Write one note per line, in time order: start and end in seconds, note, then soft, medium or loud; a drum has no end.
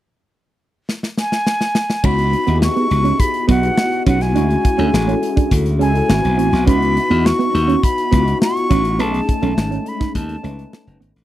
0.89 snare medium
1.03 snare soft
1.17 2.07 G#5 medium
1.17 snare medium
1.32 snare medium
1.47 snare medium
1.61 snare medium
1.75 snare medium
1.90 snare medium
2.04 2.34 C#2 loud
2.04 2.33 B3 medium
2.04 2.15 C#4 medium
2.04 2.33 D#4 medium
2.04 2.33 E4 medium
2.04 2.34 F#4 medium
2.04 2.62 B5 medium
2.04 kick medium
2.04 crash medium
2.19 closed hi-hat soft
2.33 muted clean electric guitar stroke soft
2.33 closed hi-hat medium
2.47 2.68 D#2 medium
2.47 2.58 B3 medium
2.47 3.15 B3 medium
2.47 3.15 D#4 medium
2.47 3.15 E4 medium
2.47 2.55 G4 medium
2.47 closed hi-hat soft
2.55 3.19 G#4 medium
2.62 3.21 C#6 medium
2.62 snare medium
2.76 2.87 B3 medium
2.76 closed hi-hat soft
2.90 3.11 C#2 medium
2.90 muted clean electric guitar stroke soft
2.90 closed hi-hat medium
3.04 3.16 C#4 medium
3.04 closed hi-hat soft
3.20 3.49 B5 medium
3.20 kick medium
3.20 closed hi-hat medium
3.34 closed hi-hat soft
3.48 3.69 B1 medium
3.48 3.59 B3 medium
3.48 4.06 B3 medium
3.48 4.07 D#4 medium
3.48 4.07 E4 medium
3.48 4.07 F#4 medium
3.48 4.03 F#5 medium
3.48 kick medium
3.48 closed hi-hat medium
3.63 closed hi-hat soft
3.78 snare loud
3.92 closed hi-hat soft
4.06 4.35 B1 medium
4.06 4.17 C#4 medium
4.06 4.23 F#5 medium
4.06 kick medium
4.06 closed hi-hat medium
4.21 5.54 G#5 medium
4.21 snare soft
4.21 closed hi-hat soft
4.35 4.55 D2 medium
4.35 4.65 G#3 medium
4.35 4.65 C#4 medium
4.35 4.46 D4 medium
4.35 4.65 E4 medium
4.35 4.65 F#4 medium
4.35 closed hi-hat medium
4.51 closed hi-hat soft
4.64 muted clean electric guitar stroke soft
4.64 kick medium
4.64 closed hi-hat medium
4.78 4.89 D2 medium
4.78 4.89 C#4 medium
4.78 5.46 C#4 medium
4.78 5.46 E4 medium
4.78 5.46 G#4 medium
4.78 5.47 A4 medium
4.78 closed hi-hat soft
4.93 5.14 A1 medium
4.93 snare medium
5.08 5.19 C#4 medium
5.08 closed hi-hat soft
5.22 muted clean electric guitar stroke soft
5.22 closed hi-hat medium
5.36 5.47 D4 medium
5.36 kick medium
5.36 closed hi-hat soft
5.51 5.80 D2 medium
5.51 kick medium
5.51 closed hi-hat medium
5.66 closed hi-hat soft
5.79 6.01 C#2 medium
5.79 6.09 G#3 medium
5.79 5.91 C#4 medium
5.79 6.09 C#4 medium
5.79 6.08 E4 medium
5.79 6.10 A4 medium
5.79 6.64 G#5 medium
5.79 closed hi-hat medium
5.95 closed hi-hat soft
6.08 6.20 G#1 medium
6.08 6.55 B3 medium
6.08 6.56 C4 medium
6.08 6.56 E4 medium
6.08 6.56 F#4 medium
6.08 snare loud
6.25 6.39 B1 medium
6.25 closed hi-hat soft
6.38 6.49 A1 medium
6.38 6.49 C4 medium
6.38 closed hi-hat medium
6.53 6.68 B1 medium
6.53 snare soft
6.53 closed hi-hat soft
6.66 6.98 C#2 medium
6.66 6.96 B3 medium
6.66 6.78 C#4 medium
6.66 6.96 D#4 medium
6.66 6.96 E4 medium
6.66 6.96 F#4 medium
6.66 7.27 B5 loud
6.66 kick medium
6.66 closed hi-hat medium
6.82 closed hi-hat soft
6.96 muted clean electric guitar stroke soft
6.96 closed hi-hat medium
7.10 7.31 E2 medium
7.10 7.21 B3 medium
7.10 7.78 B3 medium
7.10 7.78 D#4 medium
7.10 7.78 E4 medium
7.10 7.78 F#4 medium
7.10 closed hi-hat soft
7.26 7.85 C#6 medium
7.26 snare loud
7.39 7.50 B3 medium
7.39 closed hi-hat soft
7.53 7.75 D#2 medium
7.53 muted clean electric guitar stroke soft
7.53 closed hi-hat medium
7.68 7.79 C#4 medium
7.68 closed hi-hat soft
7.83 8.42 B5 medium
7.83 kick medium
7.83 closed hi-hat medium
7.98 closed hi-hat soft
8.11 8.33 C#2 medium
8.11 8.23 B3 medium
8.11 8.70 B3 medium
8.11 8.70 D#4 medium
8.11 8.70 E4 medium
8.11 8.20 F4 medium
8.11 kick medium
8.11 closed hi-hat medium
8.20 8.74 F#4 medium
8.28 closed hi-hat soft
8.42 9.02 C#6 loud
8.42 snare loud
8.57 closed hi-hat soft
8.70 9.00 A1 medium
8.70 8.81 C#4 medium
8.70 kick medium
8.70 closed hi-hat medium
8.85 closed hi-hat soft
8.99 9.20 B1 medium
8.99 9.28 A3 medium
8.99 9.10 B3 medium
8.99 9.28 C#4 medium
8.99 9.29 D#4 medium
8.99 9.29 G#4 medium
8.99 9.90 A5 medium
8.99 closed hi-hat medium
9.14 closed hi-hat soft
9.28 muted clean electric guitar stroke soft
9.28 kick medium
9.28 closed hi-hat medium
9.42 9.53 B1 medium
9.42 10.10 G#3 medium
9.42 10.09 A3 medium
9.42 9.53 C#4 medium
9.42 10.10 C#4 medium
9.42 10.10 D#4 medium
9.42 closed hi-hat soft
9.57 9.77 G#1 medium
9.57 snare loud
9.71 9.82 C#4 medium
9.71 closed hi-hat soft
9.86 10.16 B5 medium
9.86 muted clean electric guitar stroke soft
9.86 closed hi-hat medium
10.00 10.11 D#4 medium
10.00 kick medium
10.00 snare soft
10.00 closed hi-hat soft
10.15 10.35 D#2 medium
10.15 10.99 A5 medium
10.15 kick medium
10.15 closed hi-hat medium
10.29 closed hi-hat soft
10.43 10.64 C#2 medium
10.43 11.01 A3 medium
10.43 10.55 C#4 medium
10.43 11.01 C#4 medium
10.43 11.02 D#4 medium
10.43 11.02 B4 medium
10.43 closed hi-hat medium
10.59 closed hi-hat soft
10.73 snare loud
10.87 10.97 F#1 medium
10.87 closed hi-hat soft
11.00 11.12 G#1 medium
11.00 11.12 B3 medium
11.00 closed hi-hat medium
11.16 11.24 A1 medium
11.16 snare soft
11.16 closed hi-hat soft